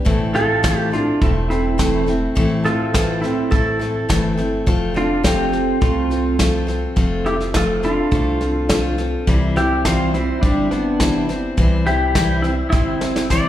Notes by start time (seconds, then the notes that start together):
0.05 A1 A2 E3 A3 C4 E4 A4, kick, snare
0.34 A3 C4 E4 F4 A4, snare
0.63 A2 E3 A3 C4 E4 A4, kick, snare, hi-hat pedal
0.77 G4
0.92 A3 C4 D4 E4 F4 A4, snare
1.21 E1 A3 C4 E4 A4, kick, snare
1.50 A3 C4 E4 A4, snare
1.78 A2 E3 A3 C4 E4 A4, kick, snare, hi-hat pedal
2.06 A3 C4 E4 A4, snare
2.35 A1 A2 E3 A3 C4 E4 A4, kick, snare
2.64 A3 C4 E4 F4 A4, snare
2.94 A2 E3 A3 C4 E4 A4, kick, snare, hi-hat pedal
3.22 A3 C4 E4 A4, snare
3.51 A1 A3 C4 E4 A4, kick, snare
3.79 A3 C4 E4 A4, snare
4.09 G1 A2 E3 A3 C4 E4 A4, kick, snare, hi-hat pedal
4.37 A3 C4 E4 A4, snare
4.66 F1 F3 A3 C4 F4 A4, kick, snare
4.94 C4 D4 F4 A4, snare
5.23 F3 A3 C4 F4 G4 A4, kick, snare, hi-hat pedal
5.52 C4 F4 A4, snare
5.81 C2 A3 C4 F4 A4, kick, snare
6.10 C4 F4 A4, snare
6.39 F3 A3 C4 F4 A4, kick, snare, hi-hat pedal
6.67 C4 F4 A4, snare
6.96 F1 F3 A3 C4 F4 A4, kick, snare
7.26 C4 E4 F4 G4 A4, snare
7.40 snare
7.54 F3 A3 C4 F4 A4, kick, snare, hi-hat pedal
7.83 C4 D4 F4 A4, snare
8.11 C2 A3 C4 F4 A4, kick, snare
8.41 C4 F4 A4, snare
8.69 F3 A3 C4 F4 A4, kick, snare, hi-hat pedal
8.98 C4 F4 A4, snare
9.27 C2 C3 E3 G3 C4 E4 C5, kick, snare
9.56 G3 C4 E4 G4 C5, snare
9.85 C3 E3 G3 C4 E4 F4 C5, kick, snare, hi-hat pedal
10.14 G3 C4 E4 C5, snare
10.41 G1 G3 C4 D4 E4, kick, snare
10.45 C5
10.71 G3 B3 C4 D4 E4 C5, snare
11.00 C3 E3 G3 C4 E4 C5, kick, snare, hi-hat pedal
11.29 G3 C4 E4 C5, snare
11.57 C2 C3 E3 G3 C4 E4 C5, kick, snare
11.86 G3 C4 E4 G4 C5, snare
12.15 C3 E3 G3 C4 E4 C5, kick, snare, hi-hat pedal
12.44 G3 C4 E4 C5, snare
12.72 G1 G3 C4 E4 C5, kick, snare
13.01 G3 C4 E4 C5, snare
13.16 snare
13.30 C3 E3 G3 C4 E4 C5 D5, kick, snare, hi-hat pedal